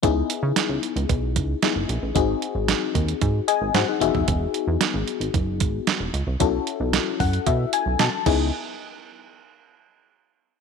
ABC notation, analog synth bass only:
X:1
M:4/4
L:1/16
Q:1/4=113
K:C#m
V:1 name="Analog synth bass" clef=bass
C,,2 z C, z C,, z C,, B,,,2 C,,2 z F,,, ^A,,, =A,,, | G,,,2 z G,,,2 z D,,2 G,,2 z G,,, G,, z E,,, ^E,,, | E,,,2 z E,, z G,,, z G,,, F,,,2 G,,,2 z E,,, C,, ^B,,, | B,,,2 z B,,,2 z F,,2 B,,2 z B,,, B,, z C,,2 |
z16 |]